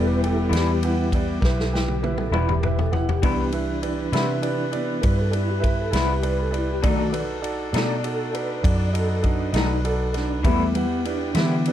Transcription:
Already playing: fingered electric bass E1, tonewheel organ G3 B3 E4, horn section G3 B3 E4 G4, grand piano E4 G4 B4 D5
0.07 tonewheel organ B4
0.23 grand piano E4 G4 B4 G5, tonewheel organ A4, ride
0.42 tonewheel organ A4
0.50 fingered electric bass E2, clean electric guitar E3 G3 B3 E4, grand piano E4 G4 B4 D5, ride
0.55 tonewheel organ G4, snare
0.83 tonewheel organ G3, grand piano E4 G4 B4 F#5, ride
0.87 tonewheel organ E4
1.12 tonewheel organ G3 B3 E4, grand piano E4 G4 B4 D5, kick, ride
1.41 fingered electric bass B1, grand piano E4 G4 B4 E5, tonewheel organ A#4, kick, snare
1.45 tonewheel organ B4
1.60 tonewheel organ A4, snare
1.72 grand piano E4 G4 B4 G5, tonewheel organ E4, snare
1.88 tonewheel organ G4, high tom
2.02 grand piano E4 G4 B4 E5, tonewheel organ A#4, high tom
2.06 tonewheel organ B4
2.18 tonewheel organ A4, mid tom
2.31 fingered electric bass E1, clean electric guitar E3 G3 B3 E4, grand piano E4 G4 B4 E5, mid tom
2.36 tonewheel organ E4
2.49 tonewheel organ G4, mid tom
2.61 grand piano E4 G4 B4 E5, tonewheel organ A#4, mid tom
2.65 tonewheel organ B4
2.79 tonewheel organ A4, floor tom
2.92 grand piano E4 G4 B4 F#5, floor tom
2.96 tonewheel organ E4
3.09 tonewheel organ G4, floor tom
3.22 fingered electric bass C2, clean electric guitar C3 G3 B3 E4, tonewheel organ E3 B3 D4 G4, horn section B3 E4 B4, grand piano E4 G4 B4 D5, kick, ride
3.52 grand piano E4 G4 B4 E5, ride
3.82 grand piano E4 G4 B4 D5, ride
4.12 fingered electric bass C3, clean electric guitar C3 G3 B3 E4, grand piano E4 G4 B4 E5, snare, ride
4.42 grand piano E4 G4 B4 D5, ride
4.71 tonewheel organ E3 B3 D4, grand piano E4 G4 B4 D5, ride
5.01 fingered electric bass G2, grand piano E4 G4 B4 D5, tonewheel organ A#4, kick, ride
5.06 tonewheel organ B4
5.21 tonewheel organ A4
5.31 grand piano E4 G4 B4 D5, ride
5.37 tonewheel organ E4
5.51 tonewheel organ G4
5.60 grand piano E4 G4 B4 E5, tonewheel organ A#4, kick, ride
5.66 tonewheel organ B4
5.81 tonewheel organ A4
5.91 fingered electric bass C2, clean electric guitar C3 B3 E4, grand piano E4 G4 B4 E5, ride
5.95 clean electric guitar G3, tonewheel organ E4, snare
6.12 tonewheel organ G4
6.22 grand piano E4 G4 B4 D5, tonewheel organ A#4, ride
6.28 tonewheel organ B4
6.42 tonewheel organ A4
6.51 grand piano E4 G4 B4 D5, ride
6.58 tonewheel organ E4
6.71 tonewheel organ G4
6.83 fingered electric bass B1, clean electric guitar B2 A3 D4 D#4, tonewheel organ D#3 A3 D5, horn section A3 D4 D#4 A4, grand piano D#4 F#4 A4 D5, kick, ride
6.87 tonewheel organ F#4
7.12 grand piano D#4 F#4 A4 B4, ride
7.41 grand piano D#4 F#4 A4 D5, ride
7.72 fingered electric bass B2, clean electric guitar B2 A3 D4 D#4, grand piano D#4 F#4 A4 D5, ride
7.76 tonewheel organ D5, snare
8.04 grand piano D#4 F#4 A4 D5, tonewheel organ A4, ride
8.32 grand piano D#4 F#4 A4 D5, tonewheel organ B4, ride
8.62 fingered electric bass F#2, horn section B3 B4, grand piano D#4 F#4 A4 D5, tonewheel organ D5, kick, ride
8.93 grand piano D#4 F#4 A4 D#5, tonewheel organ A4, ride
9.22 tonewheel organ D4, grand piano D#4 F#4 A4 D#5, kick, ride
9.52 fingered electric bass B1, clean electric guitar B2 A3 D4 D#4, grand piano D#4 F#4 A4 D#5, tonewheel organ D#4, snare, ride
9.84 grand piano D#4 F#4 A4 D5, tonewheel organ A4, ride
10.14 tonewheel organ D4, grand piano D#4 F#4 A4 D5, snare, ride
10.43 fingered electric bass E2, clean electric guitar E3 G3 B3 E4, tonewheel organ E3 G3 B3, horn section G3 B3 E4 G4, grand piano E4 G4 B4 E5, kick, ride
10.49 tonewheel organ A3
10.75 tonewheel organ B3, grand piano E4 G4 B4 F#5, ride
11.05 tonewheel organ D4, grand piano E4 G4 B4 D5, ride
11.35 tonewheel organ D3 B3, fingered electric bass E3, clean electric guitar E3 G3 B3 E4, grand piano E4 G4 B4 E5, snare, ride
11.66 grand piano E4 G4 B4 D5, ride

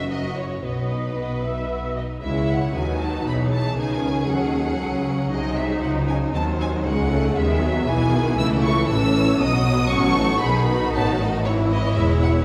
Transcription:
Already playing: double bass section F#1, cello section F#2, violin section D#4 D#5 E5, viola section F#4
0.10 violin section F#4 A#4 D#5
0.36 violin section E4 C#5
0.63 double bass section B1, cello section B2, violin section B3 F#4 B4, viola section D#5
0.72 violin section C#5
0.80 violin section B4
0.90 violin section D#4 B4
1.16 violin section B3 F#4, viola section D#5
1.43 violin section D#4 B4, viola section E5
1.70 violin section B3 F#4
1.96 violin section D#4 B4, viola section D#5
2.22 double bass section C#2, cello section C#3, viola section G#3 E4, violin section E4 C#5 E5
2.50 violin section F#5
2.75 double bass section D#2, cello section D#3, viola section F#3 D#4, violin section F#4 B4 G#5
3.02 violin section A5
3.26 double bass section B1, cello section B2, viola section E3, violin section G#4 C#5 B5
3.53 violin section A5
3.77 double bass section C#2, cello section C#3, viola section D#3 D#4, violin section B4 G#5
4.02 viola section C#4
4.28 double bass section D#2, cello section D#3, viola section F#3, violin section A4 F#5
4.79 double bass section C#2, cello section C#3, viola section C#4, violin section A4
5.06 violin section B4
5.31 double bass section C2, cello section C3, viola section D#4, violin section C5 D#5
5.57 violin section E5
5.82 double bass section C#2, cello section C#3, violin section D#4 F#5
6.09 violin section G#5
6.33 double bass section D#2, cello section D#3, viola section F#3 C4, violin section C5 A5
6.61 violin section G#5
6.84 double bass section C#2, cello section C#3, viola section G#3 C#4, violin section G#4 F#5
7.10 viola section A3
7.35 double bass section D#2, cello section D#3, viola section G#3 B3, violin section G#4 E5
7.61 viola section F#3
7.86 double bass section B1, cello section B2, viola section E3, violin section E4 G#4 G#5
8.12 viola section D#3
8.37 double bass section C#2, cello section C#3, viola section E3 A3, violin section E4 A4 E6
8.64 violin section C#6
8.89 double bass section A1, cello section A2, viola section C#4, violin section A4 B4 E6
9.15 violin section C#5
9.39 double bass section B1, cello section B2, viola section F#3 B3, violin section F#4 D#5 D#6
9.65 viola section B3
9.91 double bass section A1, cello section A2, viola section C#4, violin section A4 F#5 C#6
10.16 viola section D#4
10.42 double bass section B1, cello section B2, viola section D#3, violin section G#4 B4 B5
10.69 violin section F#4
10.94 double bass section A1, cello section A2, violin section C#5 A5
11.20 violin section D#5
11.45 double bass section G#1, cello section G#2, viola section E3 E4, violin section E4 C#5
11.70 violin section D#5
11.96 double bass section E1, cello section E2, viola section G#3, violin section E5
12.23 violin section F#5

